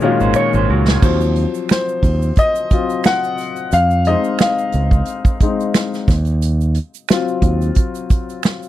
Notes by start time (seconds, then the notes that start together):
Already playing: A#2 D#3 G#3 C#4 F#4
0.00 A#2 D#3 G#3 C#4 F4 F#4 A#4, shaker
0.20 G#1 G#4 C5, shaker
0.34 A#4 C#5, finger snap, shaker
0.53 G#1 G#4 C5, shaker
0.70 C#2 F#4 A#4
0.86 F4 G#4, snare, shaker
1.02 D#2 F3 F#3 C4 C5, kick, crash, shaker
1.21 shaker
1.36 closed hi-hat
1.54 shaker
1.69 C5, finger snap, snare, closed hi-hat, shaker
1.88 shaker
2.02 D#2, kick, open hi-hat, shaker
2.22 shaker
2.36 D#5, kick, closed hi-hat, shaker
2.56 shaker
2.70 F#3 C4 F4, kick, closed hi-hat, shaker
2.90 closed hi-hat, shaker
3.04 F#5, finger snap, snare, closed hi-hat, shaker
3.24 shaker
3.38 closed hi-hat, shaker
3.56 shaker
3.72 F2 F5, closed hi-hat, shaker
3.91 shaker
4.05 G#3 C4 D#4 D#5, closed hi-hat
4.24 shaker
4.39 F5, finger snap, snare, closed hi-hat, shaker
4.58 shaker
4.72 C#2, closed hi-hat, shaker
4.91 kick, shaker
5.05 closed hi-hat, shaker
5.25 kick, shaker
5.40 G#3 C4 D#4, kick, closed hi-hat, shaker
5.60 shaker
5.74 finger snap, snare, closed hi-hat, shaker
5.94 snare, shaker
6.08 D#2, kick, snare, closed hi-hat, shaker
6.25 closed hi-hat, shaker
6.42 closed hi-hat, shaker
6.61 shaker
6.75 closed hi-hat
6.94 shaker
7.09 F#3 C4 F4, finger snap, snare, closed hi-hat, shaker
7.28 shaker
7.42 D#2, kick, closed hi-hat, shaker
7.61 closed hi-hat, shaker
7.75 kick, closed hi-hat, shaker
7.95 shaker
8.10 kick, closed hi-hat, shaker
8.29 closed hi-hat, shaker
8.43 finger snap, snare, closed hi-hat, shaker
8.63 shaker